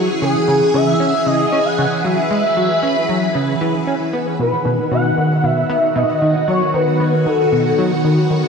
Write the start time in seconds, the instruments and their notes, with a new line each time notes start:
Already playing: string machine E3 C#4 G#4 C#5, synth texture F#5
0.22 analog synth bass C#3, analog synth lead G#4
0.48 analog synth bass C#3
0.74 analog synth bass C#3, analog synth lead E5
1.00 analog synth bass C#4
1.26 analog synth bass C#3, analog synth lead D#5
1.38 string machine B4
1.52 analog synth bass C#4
1.65 analog synth lead F#5
1.78 analog synth bass C#3
2.04 analog synth bass F#3, analog synth lead E5
2.31 analog synth bass G#3
2.57 analog synth bass F#3
2.83 analog synth bass C#4
3.09 analog synth bass F#3
3.35 analog synth bass C#3
3.61 analog synth bass E3
3.87 analog synth bass C#4
4.13 analog synth bass B3
4.39 analog synth bass B2, string machine D#3, analog synth lead B4, synth texture F#5
4.49 string machine F#4
4.62 analog synth bass B2, string machine B3
4.91 analog synth bass B2, analog synth lead F#5
5.16 analog synth bass D#3, string machine C#5
5.43 analog synth bass B2, analog synth lead E5
5.70 analog synth bass B3
5.95 analog synth bass B2, analog synth lead D#5
6.22 analog synth bass D#3
6.48 analog synth bass F#3, analog synth lead C#5
6.74 analog synth bass D#3, analog synth lead B4
7.00 analog synth bass B3
7.26 analog synth bass D#3, analog synth lead A4
7.52 analog synth bass B2
7.78 analog synth bass F#3
8.04 analog synth bass D#3
8.30 analog synth bass D#3